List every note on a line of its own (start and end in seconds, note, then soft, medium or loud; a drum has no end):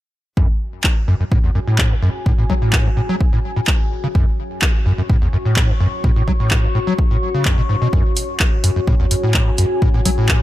0.37 0.47 F#2 medium
0.37 10.42 F#4 medium
0.37 kick loud
0.55 10.42 C#5 medium
0.77 4.58 G#5 medium
0.84 kick loud
0.84 clap loud
1.08 1.15 F#2 loud
1.20 1.24 F#2 medium
1.32 1.38 A2 loud
1.32 kick loud
1.44 1.50 E2 medium
1.55 1.59 F#2 medium
1.67 1.93 A2 medium
1.78 kick loud
1.78 clap loud
1.91 1.95 F#2 loud
2.02 2.09 F#2 loud
2.26 2.33 A2 loud
2.26 kick loud
2.38 2.45 A2 medium
2.50 2.54 F#3 loud
2.50 kick medium
2.62 2.87 A2 medium
2.73 kick loud
2.73 clap loud
2.86 2.89 F#2 loud
2.97 3.01 A2 medium
3.09 3.15 F#3 loud
3.21 kick loud
3.33 3.39 A2 medium
3.56 3.60 A2 medium
3.67 kick loud
3.67 clap loud
4.04 4.07 C#3 medium
4.15 4.25 F#2 medium
4.15 kick loud
4.55 8.35 C#6 medium
4.62 kick loud
4.62 clap loud
4.86 4.93 F#2 loud
4.98 5.02 F#2 medium
5.10 5.16 A2 loud
5.10 kick loud
5.22 5.28 E2 medium
5.33 5.37 F#2 medium
5.45 5.71 A2 medium
5.56 kick loud
5.56 clap loud
5.69 5.73 F#2 loud
5.80 5.87 F#2 loud
6.04 6.11 A2 loud
6.04 kick loud
6.16 6.23 A2 medium
6.28 6.32 F#3 loud
6.28 kick medium
6.40 6.65 A2 medium
6.51 kick loud
6.51 clap loud
6.64 6.67 F#2 loud
6.75 6.79 A2 medium
6.87 6.93 F#3 loud
6.99 kick loud
7.11 7.17 A2 medium
7.34 7.47 C#3 medium
7.45 7.56 E2 medium
7.45 kick loud
7.45 clap loud
7.58 7.62 B2 medium
7.69 7.76 G#2 medium
7.82 7.88 B2 medium
7.93 8.03 F#2 medium
7.93 kick loud
8.17 open hi-hat loud
8.33 10.42 G#5 medium
8.40 kick loud
8.40 clap loud
8.64 8.71 F#2 loud
8.64 open hi-hat medium
8.76 8.80 F#2 medium
8.87 8.94 A2 loud
8.87 kick loud
9.00 9.06 E2 medium
9.11 9.15 F#2 medium
9.11 open hi-hat loud
9.23 9.49 A2 medium
9.34 kick loud
9.34 clap loud
9.47 9.51 F#2 loud
9.58 9.65 F#2 loud
9.58 open hi-hat medium
9.82 9.89 A2 loud
9.82 kick loud
9.94 10.00 A2 medium
10.05 10.10 F#3 loud
10.05 kick medium
10.05 open hi-hat loud
10.18 10.42 A2 medium
10.29 kick loud
10.29 clap loud